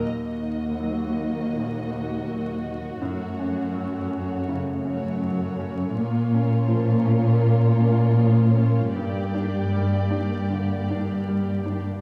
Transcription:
0.03 D#2 A#3 F#4 D#5
0.43 D#4
0.80 F#3
1.17 D#4
1.53 A#2
1.90 D#4
2.28 F#3
2.64 D#4
3.01 F#2 A3 C#5
3.39 C#4
3.75 F#3
4.11 C#4
4.48 C#3
4.84 C#4
5.22 F#3
5.59 C#4
5.95 A#2 A#3 F4
6.34 C#4
6.68 F3
7.05 C#4
7.42 A#3
7.80 C#4
8.17 F3
8.56 C#4
8.94 G2 G4 D5
9.34 D4
9.72 G3
10.11 D4
10.50 D3
10.90 D4
11.29 G3
11.66 D4

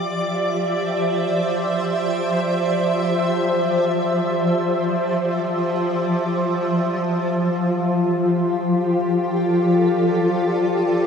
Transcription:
Already playing: F3 F4 G4 C5 D5 E5 D6
5.77 F4
6.88 G4
8.19 A4
8.73 D5

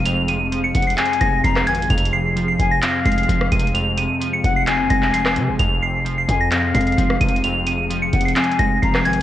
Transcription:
Already playing: F1 F2 C3 F3 G#3 C4 G#4 F5
0.05 F2 F7, closed hi-hat
0.28 C3 D#7, closed hi-hat
0.52 F3, closed hi-hat
0.64 C#7
0.75 F1 F#5, kick, closed hi-hat
0.82 closed hi-hat
0.87 C7, closed hi-hat
0.98 C4 G#5, clap, closed hi-hat
1.05 closed hi-hat
1.13 closed hi-hat
1.21 F1 G#3 A#6, kick, closed hi-hat
1.44 F1 F3 A#5 C7, kick, closed hi-hat
1.56 cross-stick, clap
1.67 G#1 C3 G#5 G#6, closed hi-hat, open hi-hat
1.75 closed hi-hat
1.82 closed hi-hat
1.90 F1 F2 F7, kick, closed hi-hat
1.98 closed hi-hat
2.05 closed hi-hat
2.13 C3 C7
2.36 F3, closed hi-hat
2.48 C7
2.59 F1 G#5, kick, closed hi-hat
2.71 A#6
2.82 C4 F5, clap, closed hi-hat
3.05 F1 G#3 C7, kick, closed hi-hat
3.12 closed hi-hat
3.18 closed hi-hat
3.23 closed hi-hat
3.28 F1 F3, kick, closed hi-hat
3.41 cross-stick
3.52 F1 C3 D#7, kick, closed hi-hat
3.59 closed hi-hat
3.67 closed hi-hat
3.74 F2 F7, closed hi-hat
3.97 C3 D#7, closed hi-hat
4.20 F3, closed hi-hat
4.33 C#7
4.44 F1 F#5, kick, closed hi-hat
4.56 C7
4.67 C4 G#5, clap, closed hi-hat
4.79 F#1
4.90 F1 G#3 A#6, kick, closed hi-hat
5.02 clap
5.13 F3 C7, closed hi-hat
5.25 cross-stick, clap
5.36 C3, closed hi-hat
5.49 F1
5.59 F1 F2 F3 C4 G#4 F5 F7, kick, closed hi-hat
5.82 C3 C7
6.05 F3, closed hi-hat
6.18 C7
6.29 F2 G#5, kick, closed hi-hat
6.41 A#6
6.51 C4 F5, clap, closed hi-hat
6.75 F2 G#3 C7, kick, closed hi-hat
6.81 closed hi-hat
6.87 closed hi-hat
6.92 closed hi-hat
6.97 F1 F3, kick, closed hi-hat
7.10 cross-stick
7.20 F1 C3 D#7, kick, closed hi-hat
7.29 closed hi-hat
7.36 closed hi-hat
7.44 F2 F7, closed hi-hat
7.67 C3 D#7, closed hi-hat
7.90 F3, closed hi-hat
8.02 C#7
8.13 F1 F#5, kick, closed hi-hat
8.21 closed hi-hat
8.25 C7, closed hi-hat
8.36 C4 G#5, clap, closed hi-hat
8.44 closed hi-hat
8.52 closed hi-hat
8.59 F1 G#3 A#6, kick, closed hi-hat
8.82 F1 F3 A#5 C7, kick, closed hi-hat
8.95 cross-stick, clap
9.05 G#1 C3 G#5 G#6, closed hi-hat, open hi-hat
9.13 closed hi-hat

